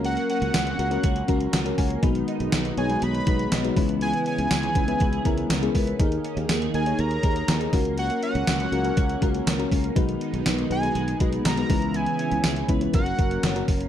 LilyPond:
<<
  \new Staff \with { instrumentName = "Analog synth lead" } { \time 4/4 \key b \major \tempo 4 = 121 fis''8 fis''2. r8 | r4. gis''8 b''4. r8 | gis''8 gis''2. r8 | r4. gis''8 ais''4. r8 |
fis''8 fis''2. r8 | r4. gis''4 r8 ais''4 | gis''4. r8 fis''4. r8 | }
  \new Staff \with { instrumentName = "FM electric piano" } { \time 4/4 \key b \major << { r2. fis''8 gis''8 | r1 | r1 | r1 |
r1 | r1 | r1 | } \\ { <cis' fis' ais'>4 r8 <cis' fis' ais'>16 <cis' fis' ais'>8 r16 <cis' fis' ais'>8 r16 <cis' fis' ais'>8 r16 | <gis b dis' fis' b'>4 r8 <gis b dis' fis' cis''>16 <gis b dis' fis' b'>8 r16 <gis b dis' fis' b'>8 r16 <gis b dis' fis' b'>16 <gis b cis' e' b'>8~ | <gis b cis' e' b'>4 r8 <gis b cis' e' b'>16 <gis b cis' e' b'>8 r16 <gis b cis' e' ais'>8 r16 <gis b cis' e' gis'>8 r16 | <dis' gis' ais'>4 r8 <dis' gis' ais'>16 <dis' gis' cis''>8 r16 <dis' gis' ais'>8 r16 <dis' gis' ais'>16 <cis' fis' ais'>8~ |
<cis' fis' ais'>4 r8 <cis' fis' ais'>16 <cis' fis' ais'>8 r16 <cis' fis' ais'>8 r16 <cis' fis' ais'>8 r16 | <gis b dis' fis' b'>4 r8 <gis b dis' fis' b'>16 <gis b dis' fis' b'>8 r16 <gis b dis' fis' b'>8 r16 <gis b dis' fis' b'>16 <gis b cis' e' b'>8~ | <gis b cis' e' b'>4 r8 <gis b cis' e' b'>16 <gis b cis' e' b'>16 <cis' fis' ais'>8 <cis' fis' ais'>8 r16 <cis' fis' ais'>8 r16 | } >> }
  \new Staff \with { instrumentName = "Clean electric guitar" } { \time 4/4 \key b \major ais8 cis'8 fis'8 ais8 fis'8 ais8 cis'8 ais8 | dis8 dis'8 fis'8 gis8 fis'8 gis8 dis'8 e8 | e8 cis'8 fis'16 gis'16 b8 fis'16 gis'16 b8 cis'8 b8 | dis8 cis'16 dis'16 gis'8 ais8 gis'8 ais8 dis'8 ais8 |
ais8 cis'8 fis'8 ais8 fis'8 ais8 cis'8 ais8 | dis8 dis'8 fis'8 gis8 fis'8 gis8 dis'8 e8 | e8 cis'8 gis'8 b8 ais8 ais8 cis'8 ais8 | }
  \new Staff \with { instrumentName = "Analog synth pad" } { \time 4/4 \key b \major << { <fis cis'>1 | <gis dis'>2.~ <gis dis'>8 <cis e'>8~ | <cis e'>1 | <dis gis'>2.~ <dis gis'>8 <fis cis'>8~ |
<fis cis'>1 | <gis dis'>2.~ <gis dis'>8 <cis e'>8~ | <cis e'>2 <fis ais'>2 | } \\ { ais1 | b1~ | b1 | ais2.~ ais8 ais8~ |
ais1 | b1~ | b2 cis'2 | } >> }
  \new Staff \with { instrumentName = "Fretless electric bass" } { \clef bass \time 4/4 \key b \major cis,8 r16 cis,16 cis,8 cis,8 cis,8 cis,8 cis,8 cis,8 | b,,8 r16 b,,16 b,,8 b,,8 b,,8 b,,8 b,,8 cis,8~ | cis,8 r16 cis,16 cis,8 cis,8 cis,8 cis,8 cis,8 cis,8 | dis,8 r16 dis,16 dis,8 dis,8 dis,8 dis,8 dis,8 cis,8~ |
cis,8 r16 cis,16 cis,8 cis,8 cis,8 cis,8 cis,8 cis,8 | b,,8 r16 b,,16 b,,8 b,,8 b,,8 b,,8 b,,8 cis,8~ | cis,8 r16 cis,16 cis,8 cis,8 fis,,8 fis,,8 fis,,8 fis,,8 | }
  \new DrumStaff \with { instrumentName = "Drums" } \drummode { \time 4/4 hh16 hh16 hh16 hh16 <hh sn tamb>16 hh16 hh16 hh16 <hh bd>16 hh16 <hh bd>16 hh16 <hh sn tamb>16 hh16 <hho bd>16 hh16 | <hh bd>16 hh16 hh16 hh16 <hh sn tamb>16 hh16 hh16 hh16 hh16 hh16 <hh bd>16 hh16 <hh sn tamb>16 hh16 <hho bd>16 hh16 | hh16 hh16 hh16 hh16 <hh sn tamb>16 hh16 <hh bd>16 hh16 <hh bd>16 hh16 <hh bd>16 hh16 <hh sn tamb>16 hh16 <hho bd>16 hh16 | <hh bd>16 hh16 hh16 hh16 <hh sn tamb>16 hh16 hh16 hh16 hh16 hh16 <hh bd>16 hh16 <hh sn tamb>16 hh16 <hho bd>16 hh16 |
hh16 hh16 hh16 hh16 <hh sn tamb>16 hh16 hh16 hh16 <hh bd>16 hh16 <hh bd>16 hh16 <hh sn tamb>16 hh16 <hho bd>16 hh16 | <hh bd>16 hh16 hh16 hh16 <hh sn tamb>16 hh16 hh16 hh16 hh16 hh16 <hh bd>16 hh16 <hh sn tamb>16 hh16 <hho bd>16 hh16 | hh16 hh16 hh16 hh16 <hh sn tamb>16 hh16 <hh bd>16 hh16 <hh bd>16 hh16 <hh bd>16 hh16 <hh sn tamb>16 hh16 <hho bd>16 hh16 | }
>>